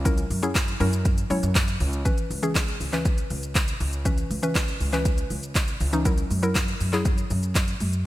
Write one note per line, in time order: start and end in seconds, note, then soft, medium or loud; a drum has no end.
0.00 0.22 C#2 loud
0.05 0.37 F#3 medium
0.05 0.37 C#4 medium
0.05 0.37 E4 medium
0.05 0.37 A#4 loud
0.05 kick loud
0.05 closed hi-hat medium
0.05 shaker medium
0.18 closed hi-hat medium
0.18 shaker medium
0.30 0.72 F#2 loud
0.30 open hi-hat medium
0.30 shaker medium
0.43 0.75 F#3 medium
0.43 0.75 C#4 medium
0.43 0.75 E4 medium
0.43 0.75 G#4 medium
0.43 closed hi-hat medium
0.43 shaker medium
0.55 kick loud
0.55 snare loud
0.55 clap loud
0.55 closed hi-hat medium
0.55 shaker medium
0.68 closed hi-hat medium
0.68 shaker medium
0.80 1.22 F#2 loud
0.80 1.23 F#3 medium
0.80 1.23 C#4 medium
0.80 1.23 E4 medium
0.80 1.23 A#4 loud
0.80 open hi-hat medium
0.80 shaker medium
0.93 closed hi-hat medium
0.93 shaker medium
1.05 kick loud
1.05 closed hi-hat medium
1.05 shaker medium
1.18 closed hi-hat medium
1.18 shaker medium
1.30 1.41 F#2 medium
1.30 1.94 F#3 medium
1.30 1.94 C#4 medium
1.30 1.94 E4 medium
1.30 1.94 C#5 medium
1.30 open hi-hat medium
1.30 shaker medium
1.43 1.74 F#2 loud
1.43 closed hi-hat medium
1.43 shaker medium
1.55 kick loud
1.55 snare medium
1.55 clap loud
1.55 closed hi-hat medium
1.55 shaker medium
1.68 closed hi-hat medium
1.68 shaker medium
1.80 2.01 C#2 loud
1.80 open hi-hat medium
1.80 shaker medium
1.93 closed hi-hat soft
1.93 shaker medium
2.05 2.37 E3 medium
2.05 2.37 C#4 medium
2.05 2.37 B4 medium
2.05 kick loud
2.05 closed hi-hat medium
2.05 shaker medium
2.18 closed hi-hat medium
2.18 shaker medium
2.30 2.72 C#2 medium
2.30 open hi-hat medium
2.30 shaker medium
2.43 2.85 E3 medium
2.43 2.85 C#4 medium
2.43 2.85 G#4 medium
2.43 closed hi-hat medium
2.43 shaker medium
2.55 kick loud
2.55 snare loud
2.55 clap loud
2.55 closed hi-hat medium
2.55 shaker medium
2.68 closed hi-hat soft
2.68 shaker soft
2.80 3.22 C#2 medium
2.80 open hi-hat medium
2.80 shaker medium
2.93 3.78 E3 medium
2.93 3.78 C#4 medium
2.93 3.78 B4 loud
2.93 clap medium
2.93 closed hi-hat medium
2.93 shaker medium
3.05 kick loud
3.05 closed hi-hat medium
3.05 shaker medium
3.18 closed hi-hat medium
3.18 shaker medium
3.30 3.72 C#2 medium
3.30 open hi-hat medium
3.30 shaker medium
3.43 closed hi-hat medium
3.43 shaker medium
3.55 kick loud
3.55 snare medium
3.55 clap loud
3.55 closed hi-hat medium
3.55 shaker medium
3.68 closed hi-hat medium
3.68 shaker medium
3.80 4.22 C#2 medium
3.80 open hi-hat medium
3.80 shaker medium
3.93 closed hi-hat soft
3.93 shaker medium
4.05 4.37 E3 medium
4.05 4.37 C#4 medium
4.05 4.37 B4 loud
4.05 kick loud
4.05 closed hi-hat medium
4.05 shaker medium
4.18 closed hi-hat medium
4.18 shaker medium
4.30 4.72 C#2 medium
4.30 open hi-hat medium
4.30 shaker medium
4.43 4.85 E3 medium
4.43 4.85 C#4 medium
4.43 4.85 B4 medium
4.43 closed hi-hat medium
4.43 shaker medium
4.55 kick loud
4.55 snare loud
4.55 clap loud
4.55 closed hi-hat medium
4.55 shaker medium
4.68 closed hi-hat soft
4.68 shaker soft
4.80 5.22 C#2 medium
4.80 open hi-hat medium
4.80 shaker medium
4.93 5.78 E3 medium
4.93 5.78 C#4 medium
4.93 5.78 B4 loud
4.93 clap medium
4.93 closed hi-hat medium
4.93 shaker medium
5.05 kick loud
5.05 closed hi-hat medium
5.05 shaker medium
5.18 closed hi-hat medium
5.18 shaker medium
5.30 5.72 C#2 medium
5.30 open hi-hat medium
5.30 shaker medium
5.43 closed hi-hat soft
5.43 shaker medium
5.55 kick loud
5.55 snare medium
5.55 clap loud
5.55 closed hi-hat medium
5.55 shaker medium
5.68 closed hi-hat medium
5.68 shaker medium
5.80 6.22 C#2 loud
5.80 open hi-hat medium
5.80 shaker medium
5.93 6.03 E3 medium
5.93 6.04 C#4 medium
5.93 6.04 D#4 loud
5.93 closed hi-hat soft
5.93 shaker medium
6.05 6.37 F#3 medium
6.05 6.37 E4 medium
6.05 6.37 A#4 loud
6.05 kick loud
6.05 closed hi-hat medium
6.05 shaker medium
6.18 closed hi-hat medium
6.18 shaker medium
6.30 6.72 F#2 medium
6.30 open hi-hat medium
6.30 shaker medium
6.43 6.85 F#3 medium
6.43 6.85 E4 medium
6.43 6.85 A#4 loud
6.43 closed hi-hat medium
6.43 shaker medium
6.55 kick loud
6.55 snare loud
6.55 clap loud
6.55 closed hi-hat medium
6.55 shaker medium
6.68 closed hi-hat soft
6.68 shaker soft
6.80 7.22 F#2 medium
6.80 open hi-hat medium
6.80 shaker medium
6.93 7.78 F#3 medium
6.93 7.78 E4 medium
6.93 7.78 G#4 loud
6.93 clap medium
6.93 closed hi-hat medium
6.93 shaker medium
7.05 kick loud
7.05 closed hi-hat medium
7.05 shaker medium
7.18 closed hi-hat medium
7.18 shaker medium
7.30 7.72 F#2 medium
7.30 open hi-hat medium
7.30 shaker medium
7.43 closed hi-hat soft
7.43 shaker medium
7.55 kick loud
7.55 snare medium
7.55 clap loud
7.55 closed hi-hat medium
7.55 shaker medium
7.68 closed hi-hat medium
7.68 shaker medium
7.80 8.06 F#2 medium
7.80 open hi-hat medium
7.80 shaker medium
7.93 closed hi-hat soft
7.93 shaker medium